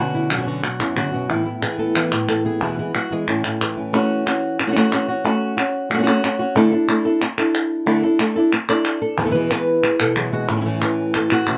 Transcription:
Already playing: B2 D3 B3 F#4
0.00 C#4 F#4
0.14 E4
0.30 D3 F#3 B3 C#4 D4 F#4, clap
0.34 D3 C#4 F#4
0.38 D3 B3 C#4 F#4
0.43 B3 C#4 F#4
0.47 B2 D3 B3 C#4 F#4
0.63 F#4, muted nylon-string guitar stroke, clap
0.80 F#2 B3 C#4 E4 F#4, clap
0.96 C#3 D3 B3 C#4 F#4, clap
1.12 B2 B3 C#4 F#4
1.29 A2 E3 A3 B3 E4
1.45 A3 B3 E4
1.62 E3 G#4, muted nylon-string guitar stroke, clap
1.79 A3 B3 E4 A4
1.95 A2 E3 A3 B3 E4 B4, clap
2.12 A2 A3 B3 E4, clap
2.28 A4, muted nylon-string guitar stroke, clap
2.45 A3 B3 E4 G#4
2.61 E2 B2 E3 G#3 B3 E4 F#4
2.78 E3 G#3 B3 E4
2.95 F#3 F#4, muted nylon-string guitar stroke, clap
3.11 E3 G#3 B3 E4 G#4
3.28 A2 E3 A3 C#4 E4 A4, clap
3.44 A3 E4, clap
3.61 E3, muted nylon-string guitar stroke, clap
3.77 A3 C#4 E4
3.93 A3 C#4 F#4
4.26 C#4 F#4, clap
4.59 muted nylon-string guitar stroke, clap
4.67 A3 C#4 F#4
4.71 A3 C#4 F#4
4.76 A3 C#4 F#4, clap
4.92 A3 C#4 F#4, clap
5.08 C#4 F#4
5.24 A3 C#4 F#4
5.57 C#4 F#4, clap
5.90 A3 C#4, muted nylon-string guitar stroke, clap
5.94 A3 C#4 F#4
5.99 A3 C#4 F#4
6.03 A3 F#4, clap
6.07 C#4 F#4
6.23 A3 C#4 F#4, clap
6.39 C#4 F#4
6.55 D3 A3 D4 E4 A4
6.72 D4 E4 A4
6.88 A3 D4 E4 A4, clap
7.05 D4 E4 A4
7.21 muted nylon-string guitar stroke, clap
7.38 D4 E4 A4, clap
7.55 clap
7.86 D3 A3 D4 E4 A4
8.03 D4 E4 A4
8.19 A3 D4 E4 A4, clap
8.36 D4 E4 A4
8.53 muted nylon-string guitar stroke, clap
8.69 D4 E4 A4 D5, clap
8.85 clap
9.02 A4
9.18 E2 B2 E3 G#3 B3 E4 B4
9.22 B2 B3 E4 A4
9.26 B2 E3 G#3 B3 E4
9.30 E3 G#3 B3 E4 B4
9.34 E2 B2 E3 G#3 B3 E4
9.51 E3 G#3 B3 E4 B4, clap
9.83 G#4, muted nylon-string guitar stroke, clap
10.00 B2 A4, clap
10.16 E3 F#3 G#3 B3 E4 G#4, clap
10.32 E3 G#3 B3 E4 F#4
10.49 A2 E3 A3 C#4 E4
10.53 E3 C#4 E4
10.57 A3 C#4 E4
10.61 E3 A3 C#4 E4
10.65 A2 E3 A3 C#4 E4
10.81 E3 A3 C#4 E4, clap
11.14 A4, muted nylon-string guitar stroke, clap
11.30 E3 F#4, clap
11.47 B2 E3 A3 C#4 E4, clap

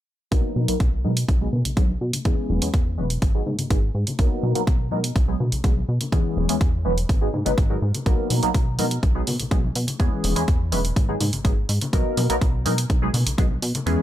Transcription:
0.31 B1 F#3 A#3 B3 D#4 A#4, kick, closed hi-hat
0.56 B2, high conga
0.68 B1 F#3 A#3 B3 D#4 A#4, closed hi-hat, shaker
0.80 B1, kick, closed hi-hat
1.04 B2 F#3 G#3 B3 D#4 A#4, high conga
1.17 closed hi-hat, shaker
1.29 B1, kick, closed hi-hat
1.41 F#3 G#3 B3 D#4 G#4
1.53 B2, low conga
1.65 B1, closed hi-hat, low conga, shaker
1.76 B1 F#3 G#3 B3 D#4 G#4, kick, closed hi-hat
1.89 high conga, shaker
2.01 B2
2.13 closed hi-hat, low conga, shaker
2.25 E2 E3 G#3 B3 C#4 G#4, kick, closed hi-hat
2.50 E1, high conga
2.62 E2 E3 G#3 B3 C#4 G#4, closed hi-hat, shaker
2.74 E2, kick, closed hi-hat
2.86 shaker
2.97 E1 E3 G#3 B3 C#4 B4, high conga
3.10 closed hi-hat
3.22 G#1, kick, closed hi-hat
3.34 F#3 G#3 B3 D#4 G#4
3.46 G#2, low conga
3.59 G#1, closed hi-hat, low conga, shaker
3.70 G#1 F#3 G#3 B3 D#4 G#4, kick, closed hi-hat
3.95 G#2
4.07 closed hi-hat, low conga, shaker
4.19 B1 F#3 A#3 B3 D#4 A#4, kick, closed hi-hat
4.32 shaker
4.43 B2, high conga
4.55 B1 F#3 A#3 B3 D#4 A#4, closed hi-hat
4.67 B1, kick, closed hi-hat
4.91 B2 F#3 G#3 B3 D#4 A#4, high conga
5.04 closed hi-hat
5.16 B1, kick, closed hi-hat
5.28 F#3 G#3 B3 D#4 G#4
5.40 B2, low conga
5.52 B1, closed hi-hat, low conga, shaker
5.64 B1 F#3 G#3 B3 D#4 G#4, kick, closed hi-hat
5.77 high conga, shaker
5.88 B2
6.01 closed hi-hat, low conga, shaker
6.12 E2 E3 G#3 B3 C#4 G#4, kick, closed hi-hat
6.37 E1, high conga
6.49 E3 G#3 B3 C#4 G#4, closed hi-hat, shaker
6.61 E2, kick, closed hi-hat
6.85 E1 E3 G#3 B3 C#4 B4, high conga
6.97 closed hi-hat, shaker
7.09 G#1, kick, closed hi-hat, shaker
7.21 F#3 G#3 B3 D#4 G#4
7.34 G#2, low conga
7.45 G#1 F#3 G#3 B3 D#4 B4, closed hi-hat, low conga, shaker
7.58 G#1, kick, closed hi-hat
7.70 F#3 G#3 B3 D#4 A#4
7.82 G#2
7.95 closed hi-hat, low conga, shaker
8.06 B1 F#3 A#3 B3 D#4 A#4, kick, closed hi-hat
8.20 shaker
8.30 B2, open hi-hat, high conga
8.43 B1 F#3 A#3 B3 D#4 A#4, closed hi-hat, shaker
8.54 B1, kick, closed hi-hat
8.78 B2 F#3 G#3 B3 D#4 A#4, open hi-hat, high conga
8.91 closed hi-hat, shaker
9.03 B1, kick, closed hi-hat
9.15 F#3 G#3 B3 D#4 G#4
9.27 B2, open hi-hat, low conga
9.40 B1, closed hi-hat, low conga, shaker
9.51 B1 F#3 G#3 B3 D#4 G#4, kick, closed hi-hat
9.64 high conga, shaker
9.75 B2, open hi-hat
9.87 closed hi-hat, low conga, shaker
9.99 E2 E3 G#3 B3 C#4 G#4, kick, closed hi-hat
10.24 E1, open hi-hat, high conga
10.36 E2 E3 G#3 B3 C#4 G#4, closed hi-hat
10.48 E2, kick, closed hi-hat
10.72 E1 E3 G#3 B3 C#4 B4, open hi-hat, high conga
10.85 closed hi-hat, shaker
10.96 G#1, kick, closed hi-hat
11.08 F#3 G#3 B3 D#4 G#4
11.20 G#2, open hi-hat, low conga
11.33 G#1, closed hi-hat, low conga, shaker
11.44 G#1 F#3 G#3 B3 D#4 G#4, kick, closed hi-hat
11.57 shaker
11.69 G#2, open hi-hat
11.81 closed hi-hat, low conga, shaker
11.93 B1 F#3 A#3 B3 D#4 A#4, kick, closed hi-hat
12.06 shaker
12.17 B2, open hi-hat, high conga
12.29 B1 F#3 A#3 B3 D#4 A#4, closed hi-hat, shaker
12.41 B1, kick, closed hi-hat, shaker
12.65 B2 F#3 G#3 B3 D#4 A#4, open hi-hat, high conga
12.78 closed hi-hat, shaker
12.90 B1, kick, closed hi-hat
13.02 F#3 G#3 B3 D#4 G#4
13.13 B2, open hi-hat, low conga
13.26 B1, closed hi-hat, low conga, shaker
13.38 B1 F#3 G#3 B3 D#4 G#4, kick, closed hi-hat
13.51 high conga, shaker
13.62 B2, open hi-hat
13.74 closed hi-hat, low conga, shaker
13.86 E2 E3 G#3 B3 C#4 G#4, closed hi-hat

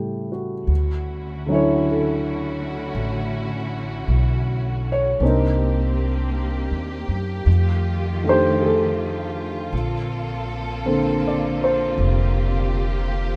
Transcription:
Already playing: A2 C#3 G3 A3 E4 G4 A4 C#5
0.32 F#4
0.66 D2 D3 A3 C#4 E4 F#4
1.46 D3 F#3 C#4
1.52 E4 C#5
1.91 A4
2.95 A1
4.08 B1
4.92 C#5
5.20 C2 A#3 C4 D4 D#4 G4
5.29 A#4
6.71 D#2
7.09 F#2
7.45 F2 D#3 A3 F4
8.24 D#3 A3 D4
8.29 G4 C5
8.61 G#4
8.66 A4
9.71 A#1 D3 A#3 C4 A4
10.86 D3 A#3 C4 A4
11.28 D5
11.64 C5
11.97 F1 G4

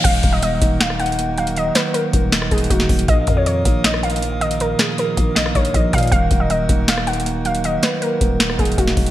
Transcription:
0.04 D#1 D#3 A#3 F#4 F5, kick, closed hi-hat, crash
0.23 D#1 F#3, kick, closed hi-hat
0.33 D#5
0.42 A#3 D#5, closed hi-hat
0.62 D#1 D#4, kick, closed hi-hat
0.80 D#5 F5, snare, closed hi-hat
0.90 cross-stick
1.00 D#4 F#5, closed hi-hat
1.06 closed hi-hat
1.12 closed hi-hat
1.18 A#3, closed hi-hat
1.37 F#3 F5, closed hi-hat
1.47 closed hi-hat
1.56 D#3 D#5, closed hi-hat
1.75 F#3 B4, snare, closed hi-hat
1.94 A#3 A#4, closed hi-hat
2.13 D#1 D#4, kick, closed hi-hat
2.32 D#5, snare, closed hi-hat
2.42 cross-stick
2.51 D#1 D#4 G#4, kick, closed hi-hat
2.58 closed hi-hat
2.64 closed hi-hat
2.70 D#1 A#3 F#4, kick, closed hi-hat
2.80 snare
2.89 D#1 F#3, kick, closed hi-hat, open hi-hat
2.99 closed hi-hat
3.08 A#1 A#2 A#3 F4 D#5, kick, closed hi-hat
3.27 F2 D#3, kick, closed hi-hat
3.37 C#5
3.46 F3 C#5, closed hi-hat
3.65 A#1 A#3, kick, closed hi-hat
3.84 D#5, snare, closed hi-hat
3.94 cross-stick
4.03 A#3 F5, closed hi-hat
4.10 closed hi-hat
4.16 closed hi-hat
4.22 F3, closed hi-hat
4.41 D#3 D#5, closed hi-hat
4.51 closed hi-hat
4.60 A#2 A#4, closed hi-hat
4.79 D#3 G#4, snare, closed hi-hat
4.98 F3 A#4, closed hi-hat
5.17 A#1 A#3, kick, closed hi-hat
5.35 D#4 D#5, snare, closed hi-hat
5.46 cross-stick
5.55 A#1 A#3 C#5, kick, closed hi-hat
5.65 closed hi-hat
5.74 A#1 F3 D#5, kick, closed hi-hat
5.93 A#2 D#3 F5, kick, closed hi-hat
5.98 closed hi-hat
6.03 closed hi-hat
6.07 closed hi-hat
6.12 D#1 D#3 F#4 F5, kick, closed hi-hat
6.31 D#1 F#3, kick, closed hi-hat
6.40 D#5
6.50 A#3 D#5, closed hi-hat
6.69 D#1 D#4, kick, closed hi-hat
6.88 D#5 F5, snare, closed hi-hat
6.98 cross-stick
7.07 D#4 F#5, closed hi-hat
7.13 closed hi-hat
7.20 closed hi-hat
7.26 A#3, closed hi-hat
7.45 F#3 F5, closed hi-hat
7.55 closed hi-hat
7.64 D#3 D#5, closed hi-hat
7.83 F#3 B4, snare, closed hi-hat
8.02 A#3 A#4, closed hi-hat
8.21 D#1 D#4, kick, closed hi-hat
8.40 D#5, snare, closed hi-hat
8.50 cross-stick
8.59 D#1 D#4 G#4, kick, closed hi-hat
8.65 closed hi-hat
8.72 closed hi-hat
8.78 D#1 A#3 F#4, kick, closed hi-hat
8.87 snare
8.97 D#1 F#3, kick, closed hi-hat, open hi-hat
9.06 closed hi-hat

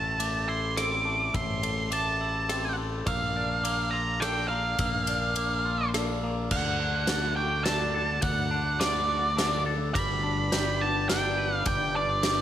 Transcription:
Already playing: A1 A2 A3 A5 E6
0.19 A3 D6, ride
0.48 E4 C6 E6
0.77 C4 D6 E6, cross-stick, ride
1.05 A3
1.34 A1 A2 C6 E6, kick, ride
1.63 A3, ride
1.91 A3 A5 D6, ride
2.21 E4 E6
2.49 C4 E6, cross-stick, ride
2.78 A3
3.06 A#1 A#3 F5 E6, kick, ride
3.36 D4
3.64 A#3 D6, ride
3.91 F4 A#5 E6
4.20 D4 G5 E6, cross-stick, ride
4.48 A#3 F5
4.79 A#1 A#3 E6, kick, ride
5.07 D4, ride
5.36 A#3 D6, ride
5.65 F4 E6
5.94 D4 E6, cross-stick, ride
6.23 A#3
6.51 D2 D3 A3 F#4 F#5 F#6, kick, crash
6.80 D4
7.07 D3 A6, snare, ride
7.36 F#4 G5 D6
7.64 D4 A5 E6, snare, ride
7.94 A4
8.22 D2 D3 F#5 F#6, kick, ride
8.51 D4
8.80 D3 D5 A6, snare, ride
9.09 F#4 D6
9.37 D4 E6, snare, ride
9.66 A4
9.94 G1 G3 D4 B4 B5 D6, kick, ride
10.23 D4
10.52 G3 G6, snare, ride
10.80 B3 A5 D6
11.08 D4 G5 E6, snare, ride
11.38 B4
11.55 F5
11.66 G1 G3 G5 D6, kick, ride
11.95 D4 D5
12.22 G3 G6, snare, ride

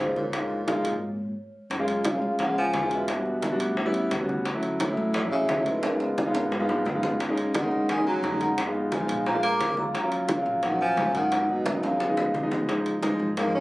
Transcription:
Already playing: G#2 C5
0.00 C#2 G#3 A#3 D#4 F4
0.16 A#2 C#5, high conga
0.33 G#3 A#3 D#4 F4, high bongo, high conga, high timbale
0.50 high bongo, high conga
0.67 G#3 A#3 D#4 F4, high bongo, high conga, high timbale
0.84 G#1, high conga, high timbale
1.70 F#1, high bongo, high conga, high timbale
1.79 G#3 A#3 C#4 F4
1.88 high conga, high timbale
2.05 C#3 F5, high bongo, high conga, high timbale
2.14 G#3 A#3 C#4 F4
2.22 C#2, high conga
2.39 C#3 F#5, high bongo, high conga, low conga, high timbale
2.48 G#3 A#3 C#4 F4
2.57 F3 G#5, high conga
2.73 E2, high bongo, low bongo, high conga, high timbale, low timbale
2.83 G#3 A#3 C#4 F4
2.91 B2 E5, high timbale
3.08 high bongo, high conga, high timbale
3.16 G3 B3 D4 F#4
3.26 high conga
3.42 high bongo, high conga, high timbale
3.51 G3 B3 D4 F#4
3.60 A1, high bongo, high conga, high timbale
3.77 high bongo, high conga
3.85 G3 B3 C#4 E4
3.94 high bongo, high conga, high timbale
4.11 D2, high bongo, low bongo, high conga, high timbale
4.20 G3 B3 C#4 F#4
4.28 high bongo, high conga
4.45 high bongo, high timbale
4.54 F#3 A3 C#4 E4
4.63 high conga, high timbale
4.80 A2 C#5, high bongo, high conga, high timbale
4.89 F#3 A3 C#4 E4
4.97 A1, high conga
5.14 A2 D5, high bongo, high conga, low conga, high timbale
5.23 F#3 A3 C#4 E4
5.31 C#3 E5, high conga
5.48 C#2, high bongo, low bongo, high conga, high timbale
5.57 F#3 A3 C#4 E4
5.65 G#2 B4, high conga, high timbale
5.83 high bongo, high conga, high timbale
5.91 G#3 B3 D#4 F4
6.00 high conga, high timbale
6.18 high bongo, high conga
6.26 G#3 B3 D#4 F4
6.34 G#1, high bongo, high timbale
6.52 high bongo, high conga, low timbale
6.60 G#3 B3 D#4 F4
6.69 high bongo, high conga, low timbale
6.85 F#1, low bongo, high conga, low timbale
6.95 G#3 B3 D#4 F4
7.03 low bongo, high conga, low timbale
7.20 high bongo, high timbale
7.29 G#3 A#3 C#4 D#4
7.38 high conga, high timbale
7.55 D#3 F#5, high bongo, high conga, high timbale
7.63 G#3 A#3 C#4 D#4
7.71 C#2, high conga
7.89 D#3 G#5, high bongo, high conga, low conga, high timbale
7.98 G#3 A#3 C#4 D#4
8.06 F#3 A#5, high conga
8.23 F2, high bongo, low bongo, high conga, high timbale
8.31 G#3 A#3 C#4 D#4
8.40 D#3 F#5, high conga, high timbale
8.58 high bongo, high timbale
8.66 G#3 B3 D#4 F4
8.75 high conga
8.92 F3 G#5, high bongo, high conga, high timbale
9.00 G#3 B3 D#4 F4
9.08 A#1, high bongo, high timbale
9.26 F3 A#5, high bongo, high conga
9.34 G#3 A#3 D4 F4
9.43 A#3 D6, high bongo, high conga, high timbale
9.60 D#2, high bongo, low bongo, high conga, high timbale
9.69 G#3 A#3 D4 F4
9.77 F#3 A#5, high bongo, high conga
9.94 high bongo, high conga, high timbale
10.03 F#3 A#3 C#4 F4
10.12 high conga, high timbale
10.29 C#3 F5, high bongo, high conga, high timbale
10.37 F#3 A#3 C#4 F4
10.46 A#1, high conga
10.63 D#3 F#5, high bongo, high conga, low conga, high timbale
10.71 F#3 A#3 C#4 F4
10.80 F3 G#5, high conga
10.97 G#1, high bongo, low bongo, high conga, high timbale
11.05 F#3 A#3 C#4 F4
11.14 D#3 F#5, high conga, high timbale
11.32 high bongo, high timbale
11.40 F#3 A#3 B3 D#4
11.49 B2 D#5, high conga
11.66 high bongo, high conga, high timbale
11.74 F#3 A#3 B3 D#4
11.83 C#2 C#3 F5, high bongo, high conga, high timbale
12.00 low bongo, high conga, low timbale
12.08 F3 G#3 B3 D#4
12.17 low bongo, high conga, low timbale
12.34 C#2, low bongo, high conga
12.43 F3 G#3 B3 D#4
12.51 low bongo, high conga, low timbale
12.68 F3 G#3 A#3 D#4, high bongo, high timbale
12.86 high conga, high timbale
13.02 F3 G#3 A#3 D#4, high bongo, high conga, high timbale
13.19 G#1, high conga
13.37 F3 G#3 A#3 D#4, high bongo, high conga, low conga, high timbale
13.54 C#4, high conga

